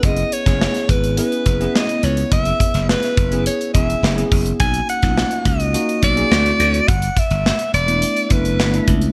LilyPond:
<<
  \new Staff \with { instrumentName = "Alto saxophone" } { \time 4/4 \key fis \mixolydian \tempo 4 = 105 dis''8 cis''4 b'8 b'4 dis''8 cis''8 | e''4 b'4 cis''8 e''4 r8 | gis''8 fis''4 dis''4 d''4. | fis''8 e''4 d''4 b'4 r8 | }
  \new Staff \with { instrumentName = "Tine electric piano" } { \time 4/4 \key fis \mixolydian <b cis' e' gis'>8 r16 <b cis' e' gis'>4 r16 <b cis' e' gis'>8 r16 <b cis' e' gis'>4~ <b cis' e' gis'>16~ | <b cis' e' gis'>16 r4. <b cis' e' gis'>8 r16 <b cis' e' gis'>8 r16 <b cis' e' gis'>8 r16 | <ais cis' dis' fis'>8 r16 <ais cis' dis' eis' fis'>4 r16 <ais cis' dis' fis'>8 r16 <ais cis' dis' gis'>16 <a c' e' fis'>8. r16 | r4. r16 <a b d' e'>8 r16 <a b d' e'>8 r16 <a b d' e'>8 r16 | }
  \new Staff \with { instrumentName = "Slap bass" } { \clef bass \time 4/4 \key fis \mixolydian fis,,8 r16 fis,,8 r16 gis,,8. r16 fis,,8 r8 cis,8 | fis,,8 r16 fis,,8 r16 fis,,8. r16 e,,8 fis,,8 fis,,8 | b,,8 r16 b,,8 r16 cis,8. r16 b,,8 d,8 d,8 | g,,8 r16 g,,8 r16 e,,8. r16 fis,,8 g,,8 cis,8 | }
  \new DrumStaff \with { instrumentName = "Drums" } \drummode { \time 4/4 <hh bd>16 hh16 hh16 <hh bd sn>16 sn16 <hh sn>16 <hh bd>16 hh16 hh16 hh16 <hh bd>16 hh16 sn16 hh16 hh16 hh16 | <hh bd>16 hh16 <hh bd>16 <hh sn>16 sn16 <hh sn>16 <hh bd>16 hh16 hh16 hh16 <hh bd>16 hh16 sn16 hh16 <hho bd>16 hh16 | <hh bd>16 hh16 hh16 <hh bd sn>16 sn16 hh16 <hh bd>16 hh16 hh16 hh16 <hh bd>16 hh16 sn16 hh16 hh16 hh16 | <hh bd>16 hh16 <hh bd>16 hh16 sn16 hh16 hh16 hh16 hh16 hh16 <hh bd>16 hh16 sn16 hh16 <hh bd>16 hh16 | }
>>